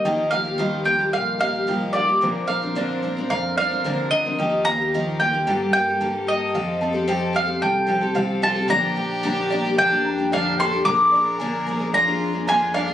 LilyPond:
<<
  \new Staff \with { instrumentName = "Upright piano" } { \time 4/4 \key bes \major \tempo 4 = 111 g''8 f''8 ees''8 g''8 f''8 ees''8 g''8 f''8 | c''8 bes''8 d''4 bes''8 d''8 c''4 | g''8 f''8 ees''8 g''8 g''8 bes'8 a''8 g''8 | f''8 a''8 g''4 a''8 g''8 f''4 |
d''8 g''8 bes''8 d''8 g''8 bes''8 d''8 g''8 | bes''8 d''8 aes''8 bes''8 d''4 bes''8 d''8 | }
  \new Staff \with { instrumentName = "Mandolin" } { \time 4/4 \key bes \major ees''8 f''4 g''8 f''8 f''4 d''8~ | d''8 f''4. f''8 f''4 ees''8~ | ees''8 bes''4 g''4 g''4 ees''8~ | ees''4. f''8 g''4. a''8 |
bes''2 g''4 f''8 c'''8 | d'''2 bes''4 aes''8 f''8 | }
  \new Staff \with { instrumentName = "Fiddle" } { \time 4/4 \key bes \major r1 | r1 | r1 | r2. r8 f'8 |
g'2 d'4 d'8 a'8 | bes'2 f'4 f'8 d'8 | }
  \new Staff \with { instrumentName = "Twelve-string acoustic guitar" } { \time 4/4 \key bes \major <ees f bes f' g'>8 <f bes f' g'>16 <bes f' g'>16 <ees f bes f' g'>8 <f bes f' g'>16 <bes f' g'>8. <f bes f' g'>16 <bes f' g'>16 <ees f bes f' g'>8 <f bes f' g'>16 <bes f' g'>16 | <bes, d f c' d' bes'>8 <f c' d' bes'>16 <f c' d' bes'>16 <bes, d f c' d' bes'>8 <f c' d' bes'>16 <f c' d' bes'>8. <f c' d' bes'>16 <f c' d' bes'>16 <bes, d f c' d' bes'>8 <f c' d' bes'>16 <f c' d' bes'>16 | <ees f bes f' g'>8 <f bes f' g'>16 <bes f' g'>16 <ees f bes f' g'>8 <f bes f' g'>16 <bes f' g'>16 <g, d g bes g' a'>8 <g bes g' a'>16 <g bes g' a'>16 <g, d g bes g' a'>8 <g bes g' a'>8 | <f c' g' a'>8 <f c' g' a'>16 <c' g' a'>16 <f c' g' a'>8 <f c' g' a'>16 <c' g' a'>8. <f c' g' a'>16 <c' g' a'>16 <f c' g' a'>8 <f c' g' a'>16 <c' g' a'>16 |
<bes, d f bes d' g'>8 <f bes d' g'>8 <bes, d f bes d' g'>8 <f bes d' g'>16 <f bes d' g'>8 <f bes d' g'>8 <f bes d' g'>16 <bes, d f bes d' g'>8 <f bes d' g'>16 <f bes d' g'>16 | <bes, d f bes d' aes'>8 <f bes d' aes'>8 <bes, d f bes d' aes'>8 <f bes d' aes'>16 <f bes d' aes'>8 <f bes d' aes'>8 <f bes d' aes'>16 <bes, d f bes d' aes'>8 <f bes d' aes'>16 <f bes d' aes'>16 | }
  \new Staff \with { instrumentName = "Steel-string acoustic guitar" } { \time 4/4 \key bes \major << { <bes g'>8 bes8 f'8 bes4 g'8 f'8 bes8 | <f c' f' bes'>8 c'8 f'8 c'4 bes'4. | r1 | r1 |
r1 | r1 | } \\ { ees4 g4 bes,4 g4 | bes,4 f4 bes,4 c8 d8 | r1 | r1 |
r1 | r1 | } >> }
  \new Staff \with { instrumentName = "Upright bass" } { \clef bass \time 4/4 \key bes \major ees,2 bes,,4 bes,,4 | bes,,2 f,4 d,4 | ees,2 g,4 g,4 | f,2 c,4 c,4 |
bes,,2 f,2 | bes,,2 f,2 | }
>>